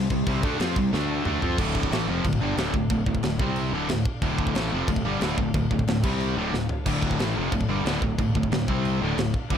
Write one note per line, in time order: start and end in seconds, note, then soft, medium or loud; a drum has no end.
0.00 0.92 G4 medium
0.00 0.92 C5 medium
0.00 0.92 C6 medium
0.10 0.26 C2 medium
0.10 0.24 C3 medium
0.10 0.24 G3 medium
0.10 kick medium
0.10 crash medium
0.27 0.42 C2 loud
0.27 0.43 C3 loud
0.27 0.42 G3 loud
0.27 0.43 C4 loud
0.27 kick loud
0.27 crash medium
0.43 0.58 D2 medium
0.43 0.59 D3 medium
0.43 0.60 A3 loud
0.43 0.59 D4 loud
0.43 kick loud
0.43 crash medium
0.60 0.75 F2 loud
0.60 0.76 F3 loud
0.60 0.76 C4 medium
0.60 0.77 F4 loud
0.60 snare loud
0.60 crash medium
0.76 0.91 C2 medium
0.76 0.90 C3 medium
0.76 0.90 G3 medium
0.76 kick medium
0.76 crash medium
0.91 1.24 D2 loud
0.91 1.24 D3 medium
0.91 1.25 A3 medium
0.91 1.24 D4 medium
0.91 1.26 D4 medium
0.91 1.24 A4 medium
0.91 1.25 A5 medium
0.91 snare medium
1.24 1.41 D2 loud
1.24 1.42 D3 medium
1.24 1.42 A3 medium
1.24 1.42 D4 loud
1.24 1.58 G4 medium
1.24 1.57 C5 medium
1.24 1.58 C6 medium
1.24 mid tom medium
1.42 1.58 F2 medium
1.42 1.58 F3 medium
1.42 1.59 C4 medium
1.42 1.59 F4 medium
1.42 floor tom loud
1.58 1.89 D1 loud
1.58 1.91 D2 loud
1.58 1.90 A2 loud
1.58 1.92 D3 loud
1.58 3.38 D4 medium
1.58 3.38 A4 medium
1.58 3.38 F5 medium
1.58 kick loud
1.58 crash loud
1.58 china medium
1.75 kick medium
1.83 kick medium
1.91 2.07 A1 loud
1.91 2.07 A2 loud
1.91 2.08 E3 medium
1.91 2.08 A3 loud
1.91 snare loud
1.91 china medium
2.09 2.24 F1 loud
2.09 2.24 F2 medium
2.09 2.25 C3 medium
2.09 2.25 F3 loud
2.25 2.40 D1 medium
2.25 2.38 D2 medium
2.25 2.38 A2 medium
2.25 kick loud
2.25 china medium
2.33 kick medium
2.42 2.57 G1 loud
2.42 2.57 G2 medium
2.42 2.57 D3 loud
2.42 2.57 G3 loud
2.57 2.73 D1 loud
2.57 2.73 D2 medium
2.57 2.74 A2 loud
2.57 2.74 D3 medium
2.57 snare loud
2.57 china medium
2.73 2.89 D1 medium
2.73 2.87 D2 medium
2.73 2.88 A2 medium
2.73 kick medium
2.90 3.06 D1 medium
2.90 3.04 D2 medium
2.90 3.04 A2 medium
2.90 kick loud
2.90 china medium
3.06 3.22 D1 medium
3.06 3.20 D2 medium
3.06 3.20 A2 medium
3.06 kick medium
3.15 kick medium
3.23 3.38 D1 medium
3.23 3.37 D2 medium
3.23 3.37 A2 medium
3.23 snare loud
3.23 china medium
3.39 3.70 C2 loud
3.39 3.73 C3 loud
3.39 3.73 G3 loud
3.39 3.72 C4 medium
3.39 3.73 C4 loud
3.39 3.73 G4 medium
3.39 3.73 G5 medium
3.39 kick loud
3.56 china medium
3.73 3.88 D1 medium
3.73 3.89 D2 medium
3.73 3.89 A2 loud
3.73 3.90 D3 loud
3.73 6.02 D4 medium
3.73 6.02 A4 medium
3.73 6.02 F5 medium
3.89 4.05 D1 medium
3.89 4.03 D2 medium
3.89 4.03 A2 medium
3.89 snare loud
3.89 china medium
4.05 kick medium
4.22 4.53 D1 loud
4.22 4.55 D2 loud
4.22 4.55 A2 loud
4.22 4.55 D3 loud
4.22 kick loud
4.22 china medium
4.38 kick medium
4.47 kick medium
4.55 4.71 A1 loud
4.55 4.72 A2 loud
4.55 4.72 E3 loud
4.55 4.72 A3 loud
4.55 snare loud
4.55 china medium
4.72 4.87 F1 loud
4.72 4.88 F2 medium
4.72 4.89 C3 medium
4.72 4.89 F3 loud
4.88 5.03 D1 medium
4.88 5.02 D2 medium
4.88 5.02 A2 medium
4.88 kick loud
4.88 china medium
4.96 kick medium
5.05 5.20 G1 medium
5.05 5.21 G2 medium
5.05 5.21 D3 loud
5.05 5.22 G3 loud
5.21 5.37 D1 loud
5.21 5.37 D2 medium
5.21 5.37 A2 medium
5.21 5.38 D3 loud
5.21 snare loud
5.21 china medium
5.38 5.53 D1 medium
5.38 5.51 D2 medium
5.38 5.51 A2 medium
5.38 kick loud
5.54 5.70 D1 medium
5.54 5.67 D2 medium
5.54 5.68 A2 medium
5.54 kick loud
5.54 china medium
5.71 5.86 D1 medium
5.71 5.84 D2 medium
5.71 5.85 A2 medium
5.71 kick medium
5.79 kick medium
5.87 6.02 D1 medium
5.87 6.01 D2 medium
5.87 6.01 A2 medium
5.87 snare loud
5.87 china medium
6.03 6.34 C2 loud
6.03 6.37 C3 medium
6.03 6.37 G3 loud
6.03 6.37 C4 medium
6.03 6.37 G4 medium
6.03 6.37 G5 medium
6.03 kick loud
6.03 crash medium
6.20 china medium
6.35 6.52 D1 medium
6.35 6.51 D2 medium
6.35 6.52 A2 medium
6.35 6.53 D3 loud
6.35 8.65 D4 medium
6.35 8.65 A4 medium
6.35 8.65 F5 medium
6.52 6.69 D1 medium
6.52 6.66 D2 medium
6.52 6.67 A2 medium
6.52 snare medium
6.69 floor tom medium
6.86 7.17 D1 medium
6.86 7.19 D2 loud
6.86 7.19 A2 loud
6.86 7.19 D3 loud
6.86 kick loud
6.86 china medium
6.86 crash loud
7.02 kick medium
7.11 kick medium
7.19 7.35 A1 medium
7.19 7.36 A2 medium
7.19 7.36 E3 loud
7.19 7.37 A3 loud
7.19 snare loud
7.19 china medium
7.37 7.52 F1 loud
7.37 7.52 F2 medium
7.37 7.53 C3 loud
7.37 7.53 F3 loud
7.52 7.68 D1 medium
7.52 7.66 D2 medium
7.52 7.66 A2 medium
7.52 kick loud
7.52 china medium
7.61 kick medium
7.69 7.84 G1 medium
7.69 7.85 G2 loud
7.69 7.85 D3 loud
7.69 7.86 G3 loud
7.85 8.01 D1 loud
7.85 8.02 D2 medium
7.85 8.02 A2 loud
7.85 8.02 D3 loud
7.85 snare loud
7.85 china medium
8.02 8.17 D1 medium
8.02 8.16 D2 medium
8.02 8.16 A2 medium
8.02 kick medium
8.19 8.34 D1 medium
8.19 8.32 D2 medium
8.19 8.32 A2 medium
8.19 kick loud
8.19 china medium
8.35 8.50 D1 medium
8.35 8.48 D2 medium
8.35 8.49 A2 medium
8.35 kick medium
8.43 kick medium
8.52 8.67 D1 medium
8.52 8.65 D2 medium
8.52 8.65 A2 medium
8.52 snare loud
8.52 china medium
8.68 8.99 C2 loud
8.68 9.01 C3 medium
8.68 9.01 G3 loud
8.68 9.01 C4 medium
8.68 9.01 G4 medium
8.68 9.01 G5 medium
8.68 kick loud
8.85 china medium
9.02 9.17 D1 medium
9.02 9.17 D2 loud
9.02 9.18 A2 medium
9.02 9.18 D3 loud
9.02 9.58 D4 medium
9.02 9.58 A4 medium
9.02 9.58 F5 medium
9.17 9.33 D1 medium
9.17 9.31 D2 medium
9.17 9.31 A2 medium
9.17 snare loud
9.17 china medium
9.34 kick medium
9.50 9.58 D1 loud
9.50 9.58 D2 medium
9.50 9.58 A2 loud
9.50 9.58 D3 loud
9.50 kick loud
9.50 china medium